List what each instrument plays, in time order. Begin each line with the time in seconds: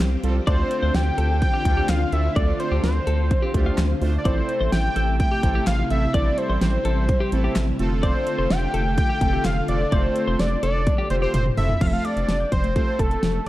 Already playing: string machine F3 C4 G4, analog synth lead C5
0.00 analog synth bass C2, snare, clap, closed hi-hat
0.24 analog synth bass C2, analog polysynth G3 C4 F4 A4, closed hi-hat
0.47 analog synth bass D2, string machine D3 F4, analog polysynth A3 D4 F4 A4, analog synth lead C5, clean electric guitar D5, kick, closed hi-hat
0.71 closed hi-hat
0.83 analog synth bass D2, clean electric guitar C5
0.94 analog synth bass D2, analog synth lead G5, snare, closed hi-hat
1.18 analog synth bass D2, clean electric guitar A4, closed hi-hat
1.42 analog synth lead G5, kick, closed hi-hat
1.54 clean electric guitar G4
1.65 analog synth bass D2, analog polysynth A3 D4 F4 A4, kick, closed hi-hat
1.77 clean electric guitar G4
1.89 analog synth bass D2, analog synth lead F5, snare, clap, closed hi-hat
2.12 analog synth bass D2, analog polysynth A3 D4 F4 A4, analog synth lead E5, closed hi-hat
2.36 analog synth bass D2, analog polysynth A3 D4 F4 A4, clean electric guitar D5, analog synth lead D5, kick, closed hi-hat
2.60 analog synth lead C5, closed hi-hat
2.72 analog synth bass D2, clean electric guitar G4
2.83 analog synth bass D2, analog synth lead C5, snare, closed hi-hat
3.07 analog synth bass D2, clean electric guitar A4, closed hi-hat
3.31 kick, closed hi-hat
3.42 clean electric guitar G4
3.54 analog synth bass D2, analog polysynth A3 D4 F4 G4, kick, closed hi-hat
3.66 clean electric guitar F4
3.78 analog synth bass D2, snare, clap, closed hi-hat
4.02 analog synth bass D2, analog polysynth A3 D4 F4 C5, open hi-hat
4.18 analog synth lead D5
4.25 analog synth bass A1, string machine C3 A3 E4, analog polysynth A3 C4 E4 A4, analog synth lead C5, clean electric guitar D5, kick, closed hi-hat
4.49 closed hi-hat
4.61 analog synth bass A1, clean electric guitar C5
4.72 analog synth bass A1, analog synth lead G5, snare, closed hi-hat
4.96 analog synth bass A1, clean electric guitar A4, closed hi-hat
5.20 analog synth lead G5, kick, closed hi-hat
5.31 clean electric guitar G4
5.43 analog synth bass A1, analog polysynth A3 C4 E4 A4, kick, closed hi-hat
5.55 clean electric guitar G4
5.67 analog synth bass A1, analog synth lead F5, snare, clap, closed hi-hat
5.90 analog synth bass A1, analog polysynth A3 C4 E4 A4, analog synth lead E5, closed hi-hat
6.14 analog synth bass A1, string machine G3, analog polysynth A3 C4 E4 A4, analog synth lead D5, clean electric guitar D5, kick, closed hi-hat
6.38 analog synth lead C5, closed hi-hat
6.50 analog synth bass A1, clean electric guitar C5
6.61 analog synth bass A1, analog synth lead C5, snare, closed hi-hat
6.85 analog synth bass A1, clean electric guitar A4, closed hi-hat
7.09 kick, closed hi-hat
7.20 clean electric guitar G4
7.32 analog synth bass A1, analog polysynth A3 C4 E4 A4, closed hi-hat
7.44 clean electric guitar G4
7.56 analog synth bass A1, snare, clap, closed hi-hat
7.79 analog synth bass F1, string machine D3 A3 F4, analog polysynth A3 C4 F4 A4, closed hi-hat
8.03 analog synth lead C5, clean electric guitar D5, kick, closed hi-hat
8.27 closed hi-hat
8.39 analog synth bass F1, clean electric guitar C5
8.50 analog synth bass F1, analog synth lead G5, snare, closed hi-hat
8.74 analog synth bass F1, clean electric guitar A4, closed hi-hat
8.98 analog synth lead G5, kick, closed hi-hat
9.09 clean electric guitar G4
9.21 analog synth bass F1, analog polysynth A3 C4 F4 A4, kick, closed hi-hat
9.33 clean electric guitar G4
9.45 analog synth bass F1, analog synth lead F5, snare, clap, closed hi-hat
9.68 analog synth bass F1, analog polysynth A3 C4 F4 A4, analog synth lead D5, closed hi-hat
9.92 analog synth bass F1, analog polysynth A3 C4 F4 A4, analog synth lead C5, clean electric guitar D5, kick, closed hi-hat
10.16 closed hi-hat
10.27 analog synth bass F1, clean electric guitar C5
10.39 analog synth bass F1, analog synth lead D5, snare, closed hi-hat
10.63 analog synth bass F1, clean electric guitar A4, analog synth lead D5, closed hi-hat
10.87 kick, closed hi-hat, high tom
10.98 clean electric guitar G4
11.10 analog synth bass F1, analog polysynth A3 C4 F4 G4, analog synth lead C5, closed hi-hat
11.22 clean electric guitar G4, analog synth lead C5
11.34 analog synth bass F1, analog synth lead C5, closed hi-hat, mid tom
11.46 mid tom
11.57 analog synth bass F1, analog polysynth A3 C4 F4 A4, analog synth lead E5, floor tom, open hi-hat
11.69 floor tom
11.81 analog synth bass F1, synth pluck F3, analog polysynth A3 C4 F4 A4, analog synth lead F5, kick, closed hi-hat, crash
11.87 analog synth lead E5
11.93 synth pluck A3, analog synth lead F5
12.05 synth pluck G4, analog synth lead D5, closed hi-hat
12.17 analog synth bass F1, synth pluck F5, closed hi-hat
12.28 analog synth bass F1, synth pluck A5, snare, closed hi-hat
12.40 synth pluck G6
12.52 analog synth bass F1, synth pluck F3, analog synth lead C5, kick, closed hi-hat
12.64 synth pluck A3, closed hi-hat
12.76 analog polysynth A3 C4 F4 A4, synth pluck G4, analog synth lead C5, kick, closed hi-hat
12.99 analog synth bass F1, analog synth lead A4, synth pluck A5, kick, closed hi-hat
13.11 closed hi-hat
13.23 analog synth bass F1, synth pluck F3, snare, closed hi-hat
13.35 synth pluck A3